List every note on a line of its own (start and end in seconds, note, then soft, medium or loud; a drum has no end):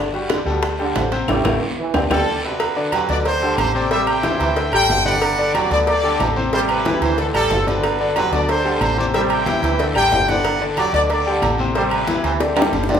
0.00 0.41 G1 loud
0.14 0.41 G3 medium
0.14 0.41 F#4 medium
0.14 0.41 G4 medium
0.14 high bongo soft
0.14 high conga soft
0.29 0.38 D3 medium
0.29 high bongo medium
0.29 high conga medium
0.29 high timbale medium
0.29 short guiro medium
0.29 claves medium
0.46 0.92 D2 loud
0.46 0.64 B2 medium
0.46 0.73 G3 medium
0.46 0.73 G4 medium
0.46 0.73 A4 medium
0.46 high conga soft
0.46 short guiro medium
0.63 high bongo medium
0.63 high conga soft
0.63 high timbale medium
0.63 long guiro medium
0.79 1.06 D3 medium
0.79 1.06 G3 medium
0.79 1.06 G4 medium
0.79 1.06 A4 medium
0.79 high bongo soft
0.79 high conga soft
0.95 1.26 A1 loud
0.95 high bongo soft
0.95 low bongo medium
0.95 high conga medium
0.95 high timbale medium
0.95 low timbale medium
0.95 short guiro medium
0.95 claves medium
1.11 1.25 C3 medium
1.11 1.25 C4 medium
1.11 1.26 C5 medium
1.11 high bongo soft
1.11 high timbale medium
1.11 short guiro medium
1.28 1.40 A1 medium
1.28 1.55 G3 medium
1.28 1.39 A3 medium
1.28 1.39 C4 medium
1.28 1.39 E4 medium
1.28 low bongo medium
1.28 high conga medium
1.28 high timbale medium
1.28 long guiro loud
1.28 claves loud
1.44 1.57 A1 loud
1.44 1.55 A3 medium
1.44 1.55 C4 loud
1.44 1.55 E4 loud
1.44 low bongo loud
1.44 high conga loud
1.44 high timbale loud
1.44 long guiro medium
1.44 claves loud
1.79 1.96 E3 medium
1.94 2.06 D2 loud
1.94 2.05 C4 medium
1.94 2.05 D4 medium
1.94 2.05 G4 medium
1.94 low bongo medium
1.94 high conga loud
1.94 high timbale loud
1.94 long guiro loud
1.94 claves medium
2.10 2.22 D2 medium
2.10 2.28 G3 medium
2.10 2.21 C4 medium
2.10 2.57 C4 medium
2.10 2.21 D4 loud
2.10 2.21 G4 loud
2.10 2.42 A4 medium
2.10 low bongo loud
2.10 high conga loud
2.10 high timbale loud
2.10 long guiro loud
2.10 claves loud
2.44 2.53 C3 medium
2.44 3.06 D4 medium
2.44 3.06 F#4 medium
2.44 2.90 B4 medium
2.60 cowbell loud
2.60 high conga soft
2.60 low agogo medium
2.60 long guiro medium
2.60 claves medium
2.76 2.90 D3 medium
2.76 2.90 D4 medium
2.76 2.90 D5 medium
2.76 high conga soft
2.92 3.01 D3 medium
2.92 3.06 F#3 medium
2.92 3.06 F#4 medium
2.92 3.06 G4 medium
2.92 3.08 B4 medium
2.92 cowbell medium
2.92 high conga medium
2.92 low agogo loud
2.92 short guiro medium
2.92 claves medium
3.09 3.54 D2 loud
3.09 3.26 B2 medium
3.09 3.36 D3 medium
3.09 3.36 D4 medium
3.09 3.36 D5 medium
3.09 3.17 D5 loud
3.09 high conga soft
3.09 low agogo medium
3.09 short guiro medium
3.25 3.87 G4 medium
3.25 3.87 A4 medium
3.25 3.56 C5 loud
3.25 cowbell loud
3.25 high conga soft
3.25 low agogo medium
3.25 long guiro medium
3.42 3.68 D3 medium
3.42 3.68 G3 medium
3.42 3.69 G4 medium
3.42 3.69 A4 medium
3.42 high conga soft
3.58 4.34 A1 loud
3.58 3.74 C5 loud
3.58 cowbell medium
3.58 high conga loud
3.58 low agogo loud
3.58 short guiro medium
3.58 claves medium
3.75 3.88 C3 medium
3.75 3.88 C4 medium
3.75 3.88 C5 medium
3.75 3.90 D5 loud
3.75 short guiro medium
3.90 4.18 C3 medium
3.90 4.17 G3 medium
3.90 4.18 C4 medium
3.90 4.53 G4 medium
3.90 4.18 C5 medium
3.90 4.07 C5 medium
3.90 4.07 E5 loud
3.90 cowbell loud
3.90 high conga soft
3.90 low agogo medium
3.90 long guiro medium
4.07 4.69 C5 medium
4.07 4.69 E5 medium
4.07 4.73 G5 loud
4.07 high conga soft
4.07 low agogo loud
4.07 claves medium
4.23 4.50 E3 medium
4.23 4.51 E4 medium
4.23 4.51 G4 medium
4.23 cowbell medium
4.23 high conga medium
4.23 short guiro medium
4.39 4.70 D2 loud
4.39 4.57 E3 medium
4.39 cowbell medium
4.39 high conga soft
4.39 low agogo medium
4.39 short guiro medium
4.56 4.70 D3 medium
4.56 4.70 D4 medium
4.56 4.70 D5 medium
4.56 cowbell loud
4.56 high conga soft
4.56 low agogo medium
4.56 long guiro medium
4.72 4.88 A1 medium
4.72 4.89 G3 medium
4.72 5.00 G3 medium
4.72 5.00 G4 medium
4.72 5.00 A4 medium
4.72 5.19 C5 medium
4.72 5.04 G5 loud
4.72 high conga soft
4.72 low agogo loud
4.72 claves medium
4.89 5.65 G1 loud
4.89 cowbell medium
4.89 high conga medium
4.89 low timbale medium
4.89 short guiro medium
5.05 5.14 C3 medium
5.05 5.32 D3 medium
5.05 5.32 D4 medium
5.05 5.68 B4 medium
5.05 5.33 D5 loud
5.05 5.54 D5 medium
5.05 5.51 F#5 loud
5.05 high conga medium
5.05 low agogo medium
5.05 short guiro medium
5.22 cowbell loud
5.22 high conga soft
5.22 low agogo loud
5.22 claves medium
5.38 5.52 D3 medium
5.38 5.52 D4 loud
5.38 5.52 D5 loud
5.38 high conga soft
5.54 5.63 D3 medium
5.54 5.68 F#3 medium
5.54 5.68 F#4 medium
5.54 5.68 G4 medium
5.54 5.71 D5 loud
5.54 cowbell medium
5.54 high conga medium
5.54 low agogo loud
5.54 short guiro medium
5.54 claves medium
5.70 6.16 D2 loud
5.70 5.87 B2 medium
5.70 5.98 D3 medium
5.70 5.98 D4 medium
5.70 5.98 D5 medium
5.70 5.79 D5 loud
5.70 high conga soft
5.70 low agogo medium
5.70 short guiro medium
5.87 6.49 G4 medium
5.87 6.49 A4 medium
5.87 6.24 D5 loud
5.87 cowbell loud
5.87 high conga soft
5.87 low agogo medium
5.87 long guiro medium
6.03 6.30 D3 medium
6.03 6.30 G3 medium
6.03 6.30 G4 medium
6.03 6.31 A4 medium
6.03 high conga soft
6.19 6.96 A1 loud
6.19 cowbell medium
6.19 high conga medium
6.19 low timbale medium
6.19 low agogo loud
6.19 short guiro medium
6.19 claves medium
6.36 6.49 C3 medium
6.36 6.50 C4 medium
6.36 6.50 C5 medium
6.36 high conga medium
6.36 short guiro medium
6.52 6.79 C3 medium
6.52 6.79 G3 medium
6.52 6.80 C4 medium
6.52 6.70 E4 medium
6.52 6.70 G4 medium
6.52 6.80 C5 medium
6.52 6.61 C5 loud
6.52 cowbell loud
6.52 high conga soft
6.52 low agogo medium
6.52 long guiro medium
6.69 7.16 E4 medium
6.69 7.16 G4 medium
6.69 7.00 B4 loud
6.69 high conga soft
6.69 low agogo loud
6.69 claves medium
6.85 7.12 E3 medium
6.85 7.12 E4 medium
6.85 7.12 G4 medium
6.85 cowbell medium
6.85 high conga loud
6.85 short guiro medium
7.01 7.31 D2 loud
7.01 7.18 E3 medium
7.01 7.18 C5 medium
7.01 cowbell medium
7.01 high conga soft
7.01 low agogo medium
7.01 short guiro medium
7.18 7.31 D3 medium
7.18 7.35 C4 medium
7.18 7.32 D4 medium
7.18 7.26 A4 medium
7.18 7.32 D5 medium
7.18 cowbell loud
7.18 high conga soft
7.18 low agogo medium
7.18 long guiro medium
7.34 7.49 A1 medium
7.34 7.51 G3 medium
7.34 7.61 G3 medium
7.34 7.81 C4 medium
7.34 7.61 G4 medium
7.34 7.61 A4 medium
7.34 7.65 A4 loud
7.34 high conga soft
7.34 low agogo loud
7.34 claves medium
7.50 8.26 G1 loud
7.50 cowbell medium
7.50 high conga medium
7.50 low timbale medium
7.50 short guiro medium
7.67 7.76 C3 medium
7.67 7.94 D3 medium
7.67 7.94 D4 medium
7.67 8.29 D4 medium
7.67 8.29 F#4 medium
7.67 8.16 B4 loud
7.67 7.94 D5 medium
7.67 high conga medium
7.67 low agogo medium
7.67 short guiro medium
7.83 cowbell loud
7.83 high conga soft
7.83 low agogo medium
7.83 long guiro medium
7.83 claves medium
8.00 8.13 D3 medium
8.00 8.13 D4 medium
8.00 8.14 D5 medium
8.00 high conga soft
8.15 8.24 D3 medium
8.15 8.29 F#3 medium
8.15 8.29 F#4 medium
8.15 8.30 G4 medium
8.15 8.32 B4 loud
8.15 cowbell medium
8.15 high conga medium
8.15 low agogo loud
8.15 short guiro medium
8.15 claves medium
8.31 8.77 D2 loud
8.31 8.49 B2 medium
8.31 8.59 D3 medium
8.31 8.59 D4 medium
8.31 8.59 D5 medium
8.31 8.48 D5 medium
8.31 high conga soft
8.31 low agogo medium
8.31 short guiro medium
8.49 9.11 G4 medium
8.49 9.11 A4 medium
8.49 8.80 C5 medium
8.49 cowbell loud
8.49 high conga soft
8.49 low agogo medium
8.49 long guiro medium
8.65 8.91 D3 medium
8.65 8.92 G3 medium
8.65 8.92 G4 medium
8.65 8.92 A4 medium
8.65 high conga soft
8.81 9.57 A1 loud
8.81 8.97 C5 loud
8.81 cowbell medium
8.81 high conga medium
8.81 low agogo loud
8.81 short guiro medium
8.81 claves medium
8.97 9.11 C3 medium
8.97 9.11 C4 medium
8.97 9.11 C5 medium
8.97 9.06 D5 medium
8.97 high conga medium
8.97 short guiro medium
9.14 9.41 C3 medium
9.14 9.40 G3 loud
9.14 9.41 C4 medium
9.14 9.76 G4 medium
9.14 9.41 C5 medium
9.14 9.31 C5 medium
9.14 9.22 E5 medium
9.14 cowbell loud
9.14 high conga soft
9.14 low agogo medium
9.14 long guiro medium
9.30 9.92 C5 medium
9.30 9.92 E5 medium
9.30 9.92 G5 loud
9.30 high conga soft
9.30 low agogo loud
9.30 claves medium
9.46 9.74 E3 medium
9.46 9.74 E4 medium
9.46 9.74 G4 medium
9.46 cowbell medium
9.46 high conga loud
9.46 short guiro medium
9.62 9.93 D2 loud
9.62 9.80 E3 medium
9.62 cowbell medium
9.62 high conga soft
9.62 low agogo medium
9.62 short guiro medium
9.79 9.93 D3 medium
9.79 9.93 D4 medium
9.79 9.93 D5 medium
9.79 cowbell loud
9.79 high conga soft
9.79 low agogo medium
9.79 long guiro medium
9.95 10.10 A1 medium
9.95 10.12 G3 medium
9.95 10.23 G3 medium
9.95 10.23 G4 medium
9.95 10.23 A4 medium
9.95 10.42 C5 medium
9.95 10.27 G5 loud
9.95 high conga soft
9.95 low agogo loud
9.95 claves medium
10.11 10.88 G1 medium
10.11 cowbell medium
10.11 high conga medium
10.11 low timbale medium
10.11 short guiro medium
10.28 10.37 C3 medium
10.28 10.55 D3 medium
10.28 10.55 D4 medium
10.28 10.90 B4 medium
10.28 10.55 D5 medium
10.28 10.64 D5 medium
10.28 10.64 F#5 loud
10.28 high conga medium
10.28 low agogo medium
10.28 short guiro medium
10.44 cowbell loud
10.44 high conga soft
10.44 low agogo medium
10.44 long guiro medium
10.44 claves medium
10.61 10.74 D3 medium
10.61 10.75 D4 medium
10.61 10.75 D5 loud
10.61 high conga soft
10.77 10.85 D3 medium
10.77 10.91 F#3 medium
10.77 10.91 F#4 medium
10.77 10.91 G4 medium
10.77 10.93 D5 loud
10.77 cowbell medium
10.77 high conga medium
10.77 low agogo loud
10.77 short guiro medium
10.77 claves medium
10.93 11.39 D2 loud
10.93 11.10 B2 medium
10.93 11.20 D3 loud
10.93 11.20 D4 medium
10.93 11.21 D5 loud
10.93 11.02 D5 loud
10.93 high conga soft
10.93 low agogo medium
10.93 short guiro medium
11.10 11.72 G4 medium
11.10 11.72 A4 medium
11.10 11.47 D5 medium
11.10 cowbell loud
11.10 high conga soft
11.10 low agogo medium
11.10 long guiro medium
11.26 11.52 D3 medium
11.26 11.53 G3 medium
11.26 11.53 G4 medium
11.26 11.53 A4 medium
11.26 high conga soft
11.41 12.18 A1 loud
11.41 cowbell medium
11.41 high conga medium
11.41 low agogo loud
11.41 short guiro medium
11.41 claves medium
11.58 11.72 C3 loud
11.58 11.73 C4 medium
11.58 11.73 C5 medium
11.58 high conga medium
11.58 short guiro medium
11.75 12.02 C3 medium
11.75 12.02 G3 loud
11.75 12.02 C4 medium
11.75 11.91 E4 medium
11.75 11.91 G4 medium
11.75 12.02 C5 medium
11.75 11.84 C5 medium
11.75 cowbell loud
11.75 high conga soft
11.75 low agogo medium
11.75 long guiro medium
11.91 12.38 E4 medium
11.91 12.38 G4 medium
11.91 12.23 B4 medium
11.91 high conga soft
11.91 low agogo loud
11.91 claves medium
12.07 12.35 E3 medium
12.07 12.35 E4 medium
12.07 12.35 G4 medium
12.07 cowbell medium
12.07 high conga loud
12.07 short guiro medium
12.23 12.69 D2 medium
12.23 12.41 E3 medium
12.23 12.33 C5 medium
12.23 cowbell medium
12.23 high conga soft
12.23 low agogo medium
12.23 short guiro medium
12.40 12.54 D3 medium
12.40 13.00 C4 medium
12.40 12.54 D4 medium
12.40 12.87 G4 medium
12.40 12.54 D5 medium
12.40 cowbell loud
12.40 high bongo medium
12.40 high conga soft
12.40 low agogo medium
12.40 long guiro medium
12.56 12.83 G3 medium
12.56 12.74 G3 medium
12.56 12.83 G4 medium
12.56 12.84 A4 medium
12.56 high conga soft
12.56 high timbale loud
12.56 low agogo loud
12.56 claves medium
12.62 low bongo loud
12.72 13.00 G1 loud
12.72 cowbell medium
12.72 high conga medium
12.72 short guiro medium
12.83 low bongo medium
12.89 12.98 C3 medium
12.89 13.00 D3 medium
12.89 13.00 D4 medium
12.89 13.00 D5 loud
12.89 high conga medium
12.89 low timbale medium
12.89 low agogo medium
12.89 short guiro medium
12.94 low bongo loud